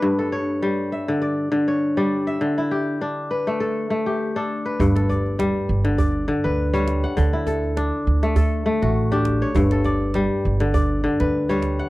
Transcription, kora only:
X:1
M:4/4
L:1/16
Q:"Swing 16ths" 1/4=101
K:Glyd
V:1 name="Kora"
B A c3 z e2 d3 c2 d2 e- | e E G3 z B2 A3 G2 A2 B- | B A d3 z3 d3 B2 c2 f- | f E A3 z3 A3 F2 G2 c- |
c A d3 z3 d3 B2 c2 f |]
V:2 name="Kora" clef=bass
G,,2 z2 G,2 z D,2 z D,2 z G,2 z | D,2 z2 D2 z A,2 z A,2 z D2 z | G,,2 z2 G,2 z D,2 z D,2 z G,2 z | D,2 z2 D2 z A,2 z A,2 z D2 z |
G,,2 z2 G,2 z D,2 z D,2 z G,2 z |]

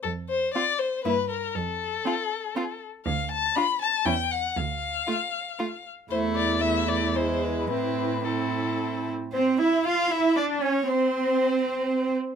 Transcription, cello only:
X:1
M:3/4
L:1/8
Q:1/4=118
K:Am
V:1 name="Cello" clef=bass
F,,2 z2 G,,2 | F,,2 z4 | D,,2 z2 E,,2 | D,,2 z4 |
E,,6 | A,,4- A,, z | C E F E D ^C | C4- C z |]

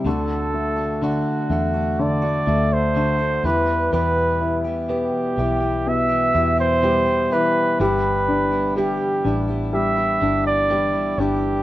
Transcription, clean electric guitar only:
X:1
M:4/4
L:1/16
Q:1/4=62
K:G
V:1 name="Clean electric guitar"
[D,A,DF]3 [A,DF] [D,A,DF]2 [D,A,DF] [A,DF]2 [A,DF] [D,A,DF]2 [D,A,DF] [A,DF] [E,G,B,G]2 | [E,,B,,E,G,B,G]3 [E,G,B,G] [E,,B,,E,G,B,G]2 [E,G,B,G] [E,G,B,G]2 [E,G,B,G] [E,G,B,G] [E,G,B,G] [E,,B,,E,G,B,G] [E,G,B,G] [E,G,B,G]2 | [G,,D,E,G,B,E]3 [E,G,B,E] [G,,D,E,G,B,E]2 [E,G,B,E] [E,G,B,E]2 [E,G,B,E] [E,G,B,E]2 [G,,D,E,G,B,E] [E,G,B,E] [E,G,B,E]2 |]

